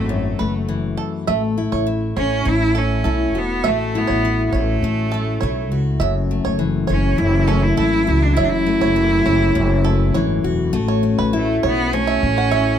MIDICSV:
0, 0, Header, 1, 5, 480
1, 0, Start_track
1, 0, Key_signature, 3, "major"
1, 0, Tempo, 591133
1, 1038, Time_signature, 4, 2, 24, 8
1, 10383, End_track
2, 0, Start_track
2, 0, Title_t, "Five-string banjo"
2, 0, Program_c, 0, 105
2, 316, Note_on_c, 0, 71, 65
2, 431, Note_off_c, 0, 71, 0
2, 791, Note_on_c, 0, 69, 67
2, 908, Note_off_c, 0, 69, 0
2, 1034, Note_on_c, 0, 76, 74
2, 1150, Note_off_c, 0, 76, 0
2, 1398, Note_on_c, 0, 73, 80
2, 1511, Note_off_c, 0, 73, 0
2, 1758, Note_on_c, 0, 73, 68
2, 1985, Note_off_c, 0, 73, 0
2, 2231, Note_on_c, 0, 69, 82
2, 2460, Note_off_c, 0, 69, 0
2, 2469, Note_on_c, 0, 69, 69
2, 2811, Note_off_c, 0, 69, 0
2, 2953, Note_on_c, 0, 76, 82
2, 3068, Note_off_c, 0, 76, 0
2, 3308, Note_on_c, 0, 73, 77
2, 3425, Note_off_c, 0, 73, 0
2, 3674, Note_on_c, 0, 73, 67
2, 3902, Note_off_c, 0, 73, 0
2, 4154, Note_on_c, 0, 69, 75
2, 4382, Note_off_c, 0, 69, 0
2, 4389, Note_on_c, 0, 73, 77
2, 4730, Note_off_c, 0, 73, 0
2, 4870, Note_on_c, 0, 76, 86
2, 4986, Note_off_c, 0, 76, 0
2, 5235, Note_on_c, 0, 73, 76
2, 5349, Note_off_c, 0, 73, 0
2, 5581, Note_on_c, 0, 73, 71
2, 5816, Note_off_c, 0, 73, 0
2, 6070, Note_on_c, 0, 69, 77
2, 6301, Note_off_c, 0, 69, 0
2, 6313, Note_on_c, 0, 69, 77
2, 6653, Note_off_c, 0, 69, 0
2, 6798, Note_on_c, 0, 76, 84
2, 6911, Note_off_c, 0, 76, 0
2, 7156, Note_on_c, 0, 73, 79
2, 7270, Note_off_c, 0, 73, 0
2, 7516, Note_on_c, 0, 73, 77
2, 7744, Note_off_c, 0, 73, 0
2, 7994, Note_on_c, 0, 69, 77
2, 8224, Note_off_c, 0, 69, 0
2, 8237, Note_on_c, 0, 73, 74
2, 8576, Note_off_c, 0, 73, 0
2, 8837, Note_on_c, 0, 73, 79
2, 8952, Note_off_c, 0, 73, 0
2, 9083, Note_on_c, 0, 71, 85
2, 9309, Note_off_c, 0, 71, 0
2, 9445, Note_on_c, 0, 73, 83
2, 9557, Note_off_c, 0, 73, 0
2, 9804, Note_on_c, 0, 76, 78
2, 9916, Note_off_c, 0, 76, 0
2, 10050, Note_on_c, 0, 78, 83
2, 10158, Note_off_c, 0, 78, 0
2, 10162, Note_on_c, 0, 76, 76
2, 10383, Note_off_c, 0, 76, 0
2, 10383, End_track
3, 0, Start_track
3, 0, Title_t, "Cello"
3, 0, Program_c, 1, 42
3, 0, Note_on_c, 1, 57, 87
3, 566, Note_off_c, 1, 57, 0
3, 1767, Note_on_c, 1, 61, 90
3, 2017, Note_on_c, 1, 64, 99
3, 2029, Note_off_c, 1, 61, 0
3, 2257, Note_on_c, 1, 61, 84
3, 2269, Note_off_c, 1, 64, 0
3, 2748, Note_on_c, 1, 59, 85
3, 2760, Note_off_c, 1, 61, 0
3, 2992, Note_on_c, 1, 57, 84
3, 3004, Note_off_c, 1, 59, 0
3, 3232, Note_on_c, 1, 59, 90
3, 3244, Note_off_c, 1, 57, 0
3, 3630, Note_off_c, 1, 59, 0
3, 3630, Note_on_c, 1, 59, 53
3, 3701, Note_on_c, 1, 57, 83
3, 3713, Note_off_c, 1, 59, 0
3, 4648, Note_off_c, 1, 57, 0
3, 5616, Note_on_c, 1, 61, 90
3, 5834, Note_on_c, 1, 64, 89
3, 5846, Note_off_c, 1, 61, 0
3, 6070, Note_on_c, 1, 61, 89
3, 6082, Note_off_c, 1, 64, 0
3, 6195, Note_on_c, 1, 64, 87
3, 6207, Note_off_c, 1, 61, 0
3, 6315, Note_off_c, 1, 64, 0
3, 6318, Note_on_c, 1, 64, 98
3, 6678, Note_on_c, 1, 62, 84
3, 6690, Note_off_c, 1, 64, 0
3, 6769, Note_on_c, 1, 64, 89
3, 6781, Note_off_c, 1, 62, 0
3, 6858, Note_on_c, 1, 62, 82
3, 6870, Note_off_c, 1, 64, 0
3, 6899, Note_on_c, 1, 64, 101
3, 6911, Note_off_c, 1, 62, 0
3, 8232, Note_off_c, 1, 64, 0
3, 9235, Note_on_c, 1, 57, 78
3, 9442, Note_off_c, 1, 57, 0
3, 9475, Note_on_c, 1, 59, 101
3, 9697, Note_on_c, 1, 61, 107
3, 9709, Note_off_c, 1, 59, 0
3, 10383, Note_off_c, 1, 61, 0
3, 10383, End_track
4, 0, Start_track
4, 0, Title_t, "Steel-string acoustic guitar"
4, 0, Program_c, 2, 25
4, 0, Note_on_c, 2, 52, 55
4, 0, Note_on_c, 2, 57, 51
4, 0, Note_on_c, 2, 66, 58
4, 75, Note_on_c, 2, 42, 65
4, 315, Note_off_c, 2, 57, 0
4, 318, Note_on_c, 2, 57, 51
4, 553, Note_off_c, 2, 52, 0
4, 556, Note_on_c, 2, 52, 65
4, 1034, Note_off_c, 2, 52, 0
4, 1037, Note_off_c, 2, 57, 0
4, 1037, Note_on_c, 2, 57, 81
4, 1084, Note_off_c, 2, 42, 0
4, 1279, Note_on_c, 2, 64, 57
4, 1304, Note_off_c, 2, 66, 0
4, 1512, Note_off_c, 2, 64, 0
4, 1515, Note_on_c, 2, 64, 63
4, 1764, Note_on_c, 2, 61, 55
4, 1989, Note_off_c, 2, 57, 0
4, 1992, Note_on_c, 2, 57, 65
4, 2235, Note_off_c, 2, 64, 0
4, 2238, Note_on_c, 2, 64, 54
4, 2475, Note_off_c, 2, 64, 0
4, 2478, Note_on_c, 2, 64, 64
4, 2720, Note_on_c, 2, 66, 62
4, 2954, Note_off_c, 2, 57, 0
4, 2957, Note_on_c, 2, 57, 83
4, 3205, Note_off_c, 2, 64, 0
4, 3208, Note_on_c, 2, 64, 62
4, 3445, Note_off_c, 2, 64, 0
4, 3449, Note_on_c, 2, 64, 60
4, 3687, Note_off_c, 2, 61, 0
4, 3690, Note_on_c, 2, 61, 54
4, 3925, Note_off_c, 2, 57, 0
4, 3929, Note_on_c, 2, 57, 75
4, 4168, Note_off_c, 2, 64, 0
4, 4171, Note_on_c, 2, 64, 56
4, 4407, Note_off_c, 2, 64, 0
4, 4411, Note_on_c, 2, 64, 62
4, 4638, Note_off_c, 2, 66, 0
4, 4641, Note_on_c, 2, 66, 64
4, 4883, Note_on_c, 2, 42, 81
4, 5119, Note_off_c, 2, 64, 0
4, 5123, Note_off_c, 2, 57, 0
4, 5123, Note_on_c, 2, 57, 57
4, 5349, Note_on_c, 2, 52, 64
4, 5374, Note_off_c, 2, 66, 0
4, 5591, Note_off_c, 2, 61, 0
4, 5594, Note_on_c, 2, 61, 55
4, 5822, Note_off_c, 2, 42, 0
4, 5831, Note_on_c, 2, 42, 76
4, 6073, Note_off_c, 2, 57, 0
4, 6077, Note_on_c, 2, 57, 58
4, 6308, Note_off_c, 2, 52, 0
4, 6311, Note_on_c, 2, 52, 68
4, 6553, Note_on_c, 2, 66, 59
4, 6783, Note_off_c, 2, 42, 0
4, 6793, Note_on_c, 2, 42, 87
4, 7032, Note_off_c, 2, 57, 0
4, 7036, Note_on_c, 2, 57, 63
4, 7272, Note_off_c, 2, 52, 0
4, 7275, Note_on_c, 2, 52, 64
4, 7519, Note_off_c, 2, 61, 0
4, 7523, Note_on_c, 2, 61, 57
4, 7746, Note_off_c, 2, 42, 0
4, 7756, Note_on_c, 2, 42, 77
4, 7990, Note_off_c, 2, 57, 0
4, 7993, Note_on_c, 2, 57, 59
4, 8238, Note_off_c, 2, 52, 0
4, 8242, Note_on_c, 2, 52, 76
4, 8476, Note_off_c, 2, 66, 0
4, 8480, Note_on_c, 2, 66, 73
4, 8709, Note_off_c, 2, 52, 0
4, 8712, Note_off_c, 2, 57, 0
4, 8712, Note_on_c, 2, 57, 81
4, 8715, Note_off_c, 2, 66, 0
4, 8718, Note_on_c, 2, 66, 63
4, 8766, Note_off_c, 2, 42, 0
4, 8953, Note_off_c, 2, 61, 0
4, 8956, Note_on_c, 2, 61, 61
4, 9201, Note_on_c, 2, 64, 70
4, 9685, Note_off_c, 2, 57, 0
4, 9688, Note_on_c, 2, 57, 76
4, 10160, Note_off_c, 2, 64, 0
4, 10163, Note_on_c, 2, 64, 64
4, 10383, Note_off_c, 2, 57, 0
4, 10383, Note_off_c, 2, 61, 0
4, 10383, Note_off_c, 2, 64, 0
4, 10383, Note_off_c, 2, 66, 0
4, 10383, End_track
5, 0, Start_track
5, 0, Title_t, "Upright bass"
5, 0, Program_c, 3, 32
5, 0, Note_on_c, 3, 32, 82
5, 286, Note_off_c, 3, 32, 0
5, 331, Note_on_c, 3, 30, 86
5, 772, Note_off_c, 3, 30, 0
5, 1043, Note_on_c, 3, 33, 80
5, 1371, Note_off_c, 3, 33, 0
5, 1401, Note_on_c, 3, 33, 81
5, 1730, Note_off_c, 3, 33, 0
5, 1760, Note_on_c, 3, 33, 88
5, 1979, Note_off_c, 3, 33, 0
5, 1999, Note_on_c, 3, 33, 93
5, 2445, Note_off_c, 3, 33, 0
5, 2479, Note_on_c, 3, 35, 85
5, 2712, Note_off_c, 3, 35, 0
5, 2712, Note_on_c, 3, 28, 89
5, 2935, Note_off_c, 3, 28, 0
5, 2959, Note_on_c, 3, 33, 87
5, 3288, Note_off_c, 3, 33, 0
5, 3326, Note_on_c, 3, 33, 77
5, 3652, Note_off_c, 3, 33, 0
5, 3674, Note_on_c, 3, 33, 91
5, 3895, Note_off_c, 3, 33, 0
5, 3917, Note_on_c, 3, 33, 87
5, 4363, Note_off_c, 3, 33, 0
5, 4401, Note_on_c, 3, 35, 85
5, 4628, Note_off_c, 3, 35, 0
5, 4628, Note_on_c, 3, 37, 89
5, 4852, Note_off_c, 3, 37, 0
5, 4874, Note_on_c, 3, 30, 90
5, 5205, Note_off_c, 3, 30, 0
5, 5247, Note_on_c, 3, 30, 84
5, 5573, Note_off_c, 3, 30, 0
5, 5603, Note_on_c, 3, 30, 97
5, 5820, Note_off_c, 3, 30, 0
5, 5841, Note_on_c, 3, 30, 97
5, 6286, Note_off_c, 3, 30, 0
5, 6324, Note_on_c, 3, 32, 76
5, 6541, Note_off_c, 3, 32, 0
5, 6563, Note_on_c, 3, 37, 88
5, 6781, Note_off_c, 3, 37, 0
5, 6805, Note_on_c, 3, 30, 85
5, 7132, Note_off_c, 3, 30, 0
5, 7160, Note_on_c, 3, 30, 83
5, 7489, Note_off_c, 3, 30, 0
5, 7520, Note_on_c, 3, 30, 97
5, 7739, Note_off_c, 3, 30, 0
5, 7761, Note_on_c, 3, 30, 105
5, 8207, Note_off_c, 3, 30, 0
5, 8246, Note_on_c, 3, 32, 80
5, 8463, Note_off_c, 3, 32, 0
5, 8478, Note_on_c, 3, 28, 87
5, 8699, Note_off_c, 3, 28, 0
5, 8725, Note_on_c, 3, 33, 99
5, 9054, Note_off_c, 3, 33, 0
5, 9088, Note_on_c, 3, 33, 86
5, 9416, Note_off_c, 3, 33, 0
5, 9450, Note_on_c, 3, 35, 81
5, 9893, Note_off_c, 3, 35, 0
5, 9931, Note_on_c, 3, 33, 99
5, 10383, Note_off_c, 3, 33, 0
5, 10383, End_track
0, 0, End_of_file